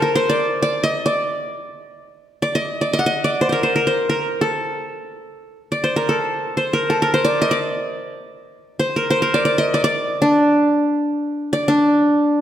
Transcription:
0.00 1.15 A#4 medium
0.00 0.15 C5 medium
0.15 1.21 C5 medium
0.29 0.62 D5 medium
0.62 0.89 D5 medium
0.83 1.12 D#5 medium
1.06 2.04 D5 medium
2.42 2.61 D5 medium
2.55 2.87 D#5 medium
2.81 2.99 D5 medium
2.93 3.06 D#5 medium
2.99 3.85 F#5 medium
3.06 3.30 D#5 medium
3.24 4.23 D5 medium
3.41 3.49 C5 medium
3.49 3.75 A#4 medium
3.49 3.63 C5 soft
3.63 3.86 C5 medium
3.76 4.09 A#4 medium
3.87 4.92 C5 medium
4.09 4.47 A#4 medium
4.41 5.58 A4 medium
5.72 6.70 D5 medium
5.84 6.57 C5 medium
5.96 6.15 A#4 medium
6.09 6.79 A4 medium
6.57 7.13 C5 medium
6.73 6.96 A#4 medium
6.90 7.08 A4 medium
7.02 8.15 A#4 medium
7.14 8.19 C5 medium
7.25 7.48 D5 medium
7.42 7.57 D#5 medium
7.51 8.49 D5 medium
8.79 9.10 C5 medium
8.96 9.22 A#4 medium
9.10 10.16 C5 medium
9.22 10.35 A#4 medium
9.34 9.45 D5 medium
9.45 9.64 D5 medium
9.58 9.80 D#5 medium
9.74 9.84 D5 medium
9.84 10.82 D5 medium
10.22 11.68 D4 medium
11.53 12.41 D5 medium
11.68 12.41 D4 medium

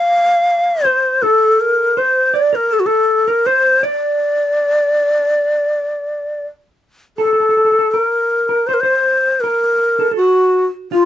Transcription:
0.00 0.85 F5 medium
0.00 0.86 F5 loud
0.84 1.24 C5 medium
0.84 1.23 C5 medium
1.22 1.62 A4 medium
1.22 1.99 A4 medium
1.60 2.00 A#4 medium
1.97 2.33 C5 medium
1.97 2.37 C5 medium
2.34 2.53 D5 medium
2.34 2.57 D5 medium
2.53 2.71 A#4 medium
2.53 2.75 A#4 medium
2.71 2.85 A4 medium
2.71 2.81 A4 medium
2.80 2.88 F#4 medium
2.86 3.27 A4 medium
2.86 3.30 A4 medium
3.28 3.45 A#4 medium
3.28 3.48 A#4 medium
3.46 3.86 C5 medium
3.46 3.83 C5 medium
3.83 6.40 D5 medium
3.83 6.45 D5 medium
7.18 7.91 A4 medium
7.18 7.24 A4 medium
7.25 7.32 A4 soft
7.33 7.39 A4 soft
7.40 7.48 A4 soft
7.49 7.56 A4 soft
7.57 7.64 A4 soft
7.65 7.71 A4 soft
7.72 7.78 A4 soft
7.79 7.87 A4 soft
7.91 8.02 A4 medium
7.91 8.48 A#4 medium
8.02 8.68 A#4 medium
8.49 8.68 A#4 medium
8.67 8.75 C5 medium
8.67 8.82 C5 medium
8.74 8.82 A#4 medium
8.80 9.42 C5 medium
8.80 9.43 C5 medium
9.41 10.15 A#4 medium
9.41 10.01 A#4 medium
10.00 10.10 A4 medium
10.11 10.19 A4 medium
10.16 10.67 F#4 medium
10.16 10.91 F#4 medium
10.92 11.05 F4 medium

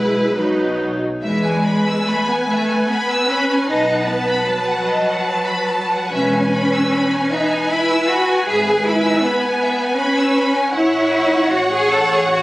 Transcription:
0.00 0.34 B1 soft
0.00 0.33 B2 soft
0.00 0.31 G#3 soft
0.00 0.30 E4 soft
0.00 0.79 B4 soft
0.00 0.80 B4 soft
0.34 1.01 B1 soft
0.34 1.00 B2 soft
0.34 1.02 F#3 soft
0.34 1.02 D#4 soft
1.22 1.92 E2 soft
1.22 2.02 G#3 medium
1.22 6.09 B4 soft
1.22 1.42 E5 soft
1.22 3.65 G#5 soft
1.44 1.65 G#5 soft
1.65 1.86 B5 soft
1.87 2.07 E6 soft
2.05 2.26 A3 medium
2.05 2.27 B5 soft
2.27 2.48 B3 soft
2.27 2.49 G#5 soft
2.47 2.88 A3 medium
2.47 2.70 E5 soft
2.71 2.90 G#5 soft
2.88 3.29 B3 soft
2.88 3.11 B5 soft
3.10 3.30 E6 soft
3.28 3.69 C#4 medium
3.28 3.51 B5 soft
3.52 3.71 G#5 soft
3.68 4.34 B1 soft
3.68 4.07 D#4 medium
3.68 3.88 D#5 soft
3.68 6.08 A5 soft
3.89 4.09 F#5 soft
4.07 4.46 B3 medium
4.07 4.28 A5 soft
4.28 4.47 B5 soft
4.46 6.12 F#3 medium
4.46 4.67 A5 soft
4.67 4.86 F#5 soft
4.87 5.06 D#5 soft
5.08 5.27 F#5 soft
5.26 5.46 A5 soft
5.47 5.68 B5 soft
5.69 5.91 A5 soft
5.94 6.14 F#5 soft
6.12 6.80 E1 soft
6.12 7.29 C#4 medium
6.12 10.71 B4 soft
6.12 6.33 E5 soft
6.12 10.71 G#5 medium
6.34 6.54 G#5 soft
6.54 6.73 B5 soft
6.74 6.93 E6 soft
6.93 7.12 B5 soft
7.13 7.32 G#5 soft
7.31 7.71 D#4 medium
7.31 7.51 E5 soft
7.50 7.70 G#5 soft
7.70 8.10 E4 medium
7.70 7.90 B5 soft
7.90 8.09 E6 soft
8.09 8.48 F#4 medium
8.09 8.29 B5 soft
8.30 8.48 G#5 soft
8.47 9.11 G#1 soft
8.47 8.84 G#4 medium
8.47 8.66 E5 soft
8.68 8.86 G#5 soft
8.84 9.23 E4 medium
8.84 9.05 B5 soft
9.05 9.24 E6 soft
9.22 9.98 B3 medium
9.22 9.43 B5 soft
9.43 9.62 G#5 soft
9.62 9.80 E5 soft
9.82 10.00 G#5 soft
9.98 10.75 C#4 medium
9.98 10.18 B5 soft
10.18 10.37 E6 soft
10.36 10.56 B5 soft
10.55 10.74 G#5 soft
10.74 12.42 A1 soft
10.74 11.50 E4 medium
10.74 12.42 C#5 soft
10.74 12.42 F#5 medium
11.52 11.71 F#4 medium
11.72 11.91 G#4 medium
11.91 12.11 A4 medium
12.13 12.32 G#4 medium
12.31 12.42 F#4 medium

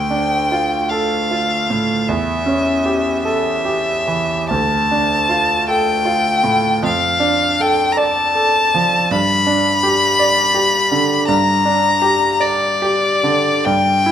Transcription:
0.00 2.04 D2 soft
0.00 0.91 G5 medium
0.10 0.76 D4 soft
0.52 1.16 F4 soft
0.90 1.55 A4 soft
0.90 2.09 F5 medium
1.31 1.93 F4 soft
1.70 2.08 A2 soft
2.08 4.46 E2 soft
2.08 3.23 E5 medium
2.46 3.08 C#4 soft
2.86 3.49 G4 soft
3.23 3.90 A4 soft
3.23 4.47 E5 medium
3.65 4.34 G4 soft
4.07 4.50 E3 soft
4.50 6.80 D2 soft
4.50 5.67 A5 medium
4.91 5.54 D4 soft
5.29 5.91 F4 soft
5.68 6.29 A4 soft
5.68 6.82 G5 medium
6.05 6.68 F4 soft
6.43 6.83 A2 soft
6.82 9.06 F2 soft
6.82 7.62 F5 medium
7.20 7.82 D4 soft
7.60 8.21 A4 soft
7.60 7.94 G5 medium
7.92 8.00 A#5 soft
7.97 8.58 D5 soft
7.97 9.12 A5 medium
8.35 8.96 A4 soft
8.74 9.11 F3 soft
9.11 11.24 G2 soft
9.11 11.27 B5 medium
9.47 10.05 D4 soft
9.83 10.41 G4 soft
10.19 10.77 D5 soft
10.54 11.13 G4 soft
10.91 11.28 D3 soft
11.28 13.61 G2 soft
11.28 12.42 A#5 medium
11.65 12.25 D4 soft
12.02 12.64 G4 soft
12.40 13.06 D5 soft
12.40 13.67 D5 medium
12.82 13.49 G4 soft
13.23 13.66 D3 soft
13.65 14.12 G2 soft
13.65 14.12 G5 medium
14.06 14.12 E4 soft

